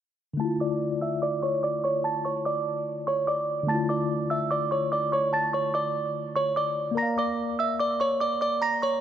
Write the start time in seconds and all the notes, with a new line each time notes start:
0.34 D3 A3
0.40 E4 A5 A6
0.45 F4
0.60 D5 D6
1.01 E5 E6
1.22 D5 D6
1.43 C#5 C#6
1.63 D5 D6
1.84 C#5 C#6
2.04 A5 A6
2.25 C#5 C#6
2.45 D5 D6
3.07 C#5 C#6
3.27 D5 D6
3.63 D3 A3
3.68 E4 A5 A6
3.74 F4
3.89 D5 D6
4.30 E5 E6
4.51 D5 D6
4.71 C#5 C#6
4.92 D5 D6
5.12 C#5 C#6
5.33 A5 A6
5.53 C#5 C#6
5.74 D5 D6
6.36 C#5 C#6
6.56 D5 D6
6.91 A#3 A#4
6.97 D5 A#5 A#6
7.02 F5
7.18 D5 D6
7.59 E5 E6
7.79 D5 D6
8.00 C#5 C#6
8.20 D5 D6
8.41 D5 D6
8.62 A#5 A#6
8.82 C#5 C#6